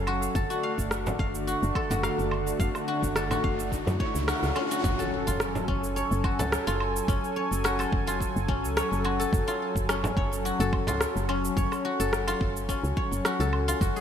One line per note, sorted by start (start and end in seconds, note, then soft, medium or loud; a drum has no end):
0.00 0.29 F#1 medium
0.00 0.31 F#3 medium
0.00 0.32 C#4 medium
0.00 0.32 A4 loud
0.00 0.35 A4 medium
0.00 0.13 F5 medium
0.00 0.31 G#5 medium
0.07 0.50 F#4 medium
0.07 low woodblock medium
0.23 cabasa medium
0.35 0.45 F#1 loud
0.35 4.80 D3 medium
0.35 4.80 A3 medium
0.35 4.80 D4 medium
0.35 4.80 F#4 loud
0.35 1.75 A4 medium
0.35 kick loud
0.35 riser medium
0.35 cabasa soft
0.50 0.69 F#4 medium
0.50 cabasa soft
0.63 1.19 F5 medium
0.78 1.13 F#1 medium
0.78 kick medium
0.78 cabasa medium
0.91 cross-stick medium
0.91 cabasa soft
1.06 frame drum medium
1.06 cabasa soft
1.19 1.55 F#1 medium
1.19 1.53 F5 medium
1.19 kick loud
1.35 cabasa medium
1.47 1.90 F#4 medium
1.47 cabasa medium
1.63 1.71 F#1 loud
1.63 cabasa soft
1.75 3.16 A4 medium
1.75 kick medium
1.75 low woodblock medium
1.90 2.09 F#1 loud
1.90 2.10 F#4 medium
1.90 frame drum medium
1.90 cabasa medium
2.03 2.59 F5 medium
2.03 cross-stick medium
2.03 cabasa medium
2.19 2.53 F#1 medium
2.19 cabasa soft
2.31 low woodblock medium
2.47 cabasa medium
2.60 2.70 F#1 loud
2.60 2.94 F5 medium
2.60 kick loud
2.60 cabasa medium
2.75 cross-stick soft
2.75 cabasa soft
2.75 low woodblock medium
2.88 3.31 F#4 medium
3.03 3.37 F#1 medium
3.03 kick medium
3.03 cabasa medium
3.16 4.99 A4 medium
3.16 cross-stick medium
3.16 cabasa soft
3.31 3.50 F#4 medium
3.31 frame drum medium
3.31 cabasa soft
3.31 low woodblock medium
3.44 3.79 F#1 medium
3.44 4.34 F5 medium
3.44 kick loud
3.60 cabasa medium
3.72 kick medium
3.72 cabasa medium
3.87 3.96 F#2 loud
3.87 frame drum medium
3.87 cabasa soft
4.00 5.91 C#5 medium
4.00 kick loud
4.15 4.33 C#2 medium
4.15 cabasa medium
4.28 4.71 F#4 medium
4.28 cross-stick loud
4.28 cabasa soft
4.43 4.52 C#2 medium
4.43 cabasa soft
4.56 5.68 C#4 medium
4.56 low woodblock medium
4.71 4.84 F#4 medium
4.71 cabasa medium
4.84 4.94 F#1 loud
4.84 13.78 F#3 medium
4.84 14.01 C#4 medium
4.84 5.33 F#4 medium
4.84 13.78 A4 medium
4.84 13.77 G#5 medium
4.84 kick loud
4.84 impact medium
4.84 cabasa soft
4.99 6.39 A4 medium
4.99 cabasa soft
5.27 5.62 F#1 medium
5.27 6.30 F4 medium
5.27 kick medium
5.27 cabasa medium
5.40 cross-stick loud
5.40 cabasa medium
5.55 frame drum medium
5.55 cabasa soft
5.68 6.04 F#1 medium
5.68 7.08 C#4 medium
5.68 kick loud
5.84 cabasa medium
5.96 7.36 C#5 medium
5.96 cabasa medium
6.11 6.41 F#1 loud
6.11 cabasa soft
6.24 6.73 F#4 medium
6.24 kick loud
6.24 low woodblock medium
6.39 6.58 C#2 loud
6.39 7.78 A4 medium
6.39 frame drum medium
6.39 cabasa medium
6.52 cross-stick loud
6.52 cabasa medium
6.67 7.02 F#1 medium
6.67 7.70 F4 loud
6.67 cabasa soft
6.80 low woodblock medium
6.96 cabasa medium
7.08 7.18 F#1 loud
7.08 8.48 C#4 medium
7.08 kick loud
7.08 cabasa medium
7.24 cabasa soft
7.36 8.76 C#5 medium
7.51 7.86 F#1 medium
7.51 cabasa medium
7.64 8.13 F#4 medium
7.64 cross-stick loud
7.64 cabasa medium
7.79 9.19 A4 medium
7.79 cabasa soft
7.79 low woodblock medium
7.92 8.28 F#1 medium
7.92 kick loud
8.07 9.10 F4 loud
8.07 cabasa medium
8.21 kick medium
8.21 cabasa medium
8.36 8.65 F#1 loud
8.36 cabasa soft
8.48 9.89 C#4 medium
8.48 kick loud
8.64 8.82 C#2 loud
8.64 cabasa medium
8.77 10.17 C#5 medium
8.77 cross-stick loud
8.77 cabasa medium
8.92 9.26 F#1 medium
8.92 cabasa soft
9.04 9.54 F#4 medium
9.04 low woodblock medium
9.20 10.60 A4 medium
9.20 cabasa medium
9.33 9.43 F#1 loud
9.33 kick loud
9.33 cabasa medium
9.48 10.51 F4 loud
9.48 cabasa soft
9.75 10.10 F#1 medium
9.75 kick medium
9.75 cabasa medium
9.89 11.28 C#4 medium
9.89 cross-stick loud
9.89 cabasa medium
10.04 frame drum medium
10.04 cabasa soft
10.17 10.52 F#1 medium
10.17 11.56 C#5 medium
10.17 kick loud
10.33 cabasa medium
10.45 10.94 F#4 medium
10.45 cabasa medium
10.60 10.89 F#1 loud
10.60 11.99 A4 medium
10.60 cabasa soft
10.73 kick loud
10.73 low woodblock medium
10.87 11.06 C#2 loud
10.87 11.91 F4 loud
10.87 frame drum medium
10.87 cabasa medium
11.01 cross-stick loud
11.01 cabasa medium
11.16 11.50 F#1 medium
11.16 cabasa soft
11.29 12.68 C#4 medium
11.29 low woodblock medium
11.45 cabasa medium
11.57 11.67 F#1 loud
11.57 12.96 C#5 medium
11.57 kick loud
11.57 cabasa medium
11.72 cross-stick soft
11.72 cabasa soft
11.72 low woodblock medium
11.85 12.34 F#4 medium
12.00 12.34 F#1 medium
12.00 13.40 A4 medium
12.00 cabasa medium
12.13 cross-stick loud
12.13 cabasa medium
12.28 13.31 F4 loud
12.28 cabasa soft
12.28 low woodblock medium
12.41 12.76 F#1 medium
12.41 kick loud
12.56 cabasa medium
12.69 14.01 C#4 medium
12.69 kick medium
12.69 cabasa medium
12.83 12.93 C#2 loud
12.83 cabasa soft
12.97 14.01 C#5 medium
12.97 kick loud
13.12 13.21 F#1 medium
13.12 cabasa medium
13.25 13.74 F#4 medium
13.25 cross-stick loud
13.25 cabasa medium
13.40 13.74 C#2 loud
13.40 14.01 A4 medium
13.40 cabasa soft
13.53 low woodblock medium
13.68 13.87 F4 medium
13.68 cabasa medium
13.81 13.91 F#1 loud
13.81 14.01 C#3 medium
13.81 14.01 F#3 loud
13.81 14.01 G#3 medium
13.81 14.01 F#4 medium
13.81 kick loud
13.81 cabasa medium
13.96 14.01 G#4 medium
13.96 cabasa soft